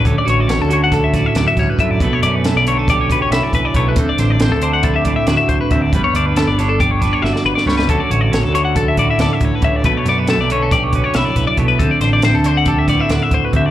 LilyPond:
<<
  \new Staff \with { instrumentName = "Clean electric guitar" } { \time 9/8 \key d \major \tempo 4. = 92 a'16 d''16 cis''16 d''16 cis''16 a'16 cis''16 fis''16 a'16 e''16 d''16 e''16 d''16 e''16 cis''16 b'16 e''16 d''16 | b'16 cis''16 d''16 b'16 a'16 d''16 cis''16 a'16 d''16 cis''16 b'16 cis''16 e''16 d''16 b'16 d''16 cis''16 b'16 | a'16 d''16 c''16 d''16 c''16 a'16 c''16 fis''16 a'16 e''16 d''16 e''16 d''16 e''16 c''16 b'16 e''16 d''16 | b'16 cis''16 d''16 b'16 a'16 d''16 cis''16 a'16 d''16 cis''16 b'16 cis''16 e''16 d''16 b'16 d''16 cis''16 b'16 |
a'16 d''16 cis''16 d''16 cis''16 a'16 cis''16 fis''16 a'16 e''16 d''16 e''16 d''16 e''16 cis''16 b'16 e''16 d''16 | b'16 cis''16 d''16 b'16 a'16 d''16 cis''16 a'16 d''16 cis''16 b'16 cis''16 e''16 d''16 b'16 d''16 cis''16 b'16 | a'16 d''16 c''16 d''16 c''16 a'16 c''16 fis''16 a'16 e''16 d''16 e''16 d''16 e''16 c''16 b'16 e''16 d''16 | }
  \new Staff \with { instrumentName = "Clean electric guitar" } { \time 9/8 \key d \major << { cis'8 fis'8 cis'8 fis'8 a'8 fis'2 | a8 cis'8 a8 b16 cis'16 g'8 cis'8 e'4 a8 | c'8 d'8 c'8 d'8 e'16 g'16 d'8 fis'4 c'8 | b8 d'8 b8 d'8 g'8 d'8 fis'4 b8 |
<d cis' fis' a'>8 fis'8 cis'8 fis'8 a'8 fis'8 a'4 cis'8 | a8 b16 cis'16 a8 cis'8 g'8 cis'8 e'4 a8 | c'8 d'8 c'8 d'8 g'8 b16 d'16 fis'4 c'8 | } \\ { d,4. d4 a,8 fis,8 g,8 a,8 | b,4. d4 fis,4. b,8 | d,4. d4 a,4. d,8 | g,4. d4 d4. g,8 |
d,4. d4 a,4. d,8 | b,4. d4 fis,4. b,8 | d,4. d4 a,4. d,8 | } >> }
  \new Staff \with { instrumentName = "Picked electric bass" } { \clef bass \time 9/8 \key d \major d,16 r16 a,,8 a,,16 d,4.~ d,16 d,16 r16 d,16 r16 fis,8 | b,,16 r16 fis,8 fis,16 b,,4.~ b,,16 b,,16 r16 b,,16 r16 b,,8 | d,16 r16 a,,8 a,,16 d,4.~ d,16 d,16 r16 d,16 r16 d,8 | g,,16 r16 d,8 d,16 g,,4.~ g,,16 g,,16 r16 g,,16 r16 cis,8 |
d,16 r16 a,,8 a,,16 d,4.~ d,16 d,16 r16 d,16 r16 cis,8 | b,,16 r16 fis,8 fis,16 b,,4.~ b,,16 b,,16 r16 b,,16 r16 b,,8 | d,16 r16 a,,8 a,,16 d,4.~ d,16 d,16 r16 d,16 r16 d,8 | }
  \new DrumStaff \with { instrumentName = "Drums" } \drummode { \time 9/8 <hh bd>8 hh8 <hh sn>8 hh8 <hh bd sn>8 <hh bd sn>8 <hh sn>8 <hh bd sn>8 <hh bd>8 | <hh bd>8 hh8 <hh sn>8 hh8 <hh bd>8 <hh bd>8 <hh sn>8 <hh bd>8 <hh bd>8 | <hh bd>8 <hh sn>8 <hh sn>8 hh8 <hh bd>8 <hh bd>8 <hh sn>8 <hh bd>8 <hh bd>8 | <hh bd>8 hh8 <hh sn>8 <hh sn>8 <hh bd>8 <hh bd sn>8 sn16 sn8 sn16 sn16 sn16 |
<hh bd>8 hh8 <hh sn>8 hh8 <hh bd>8 <hh bd>8 <hh sn>8 <hh bd>8 <hh bd>8 | <hh bd>8 <hh sn>8 <hh sn>8 hh8 <hh bd>8 <hh bd>8 <hh sn>8 <hh bd sn>8 <hh bd>8 | <hh bd>8 <hh sn>8 <hh sn>8 hh8 <hh bd>8 <hh bd sn>8 <hh sn>8 <hh bd>8 <hh bd>8 | }
>>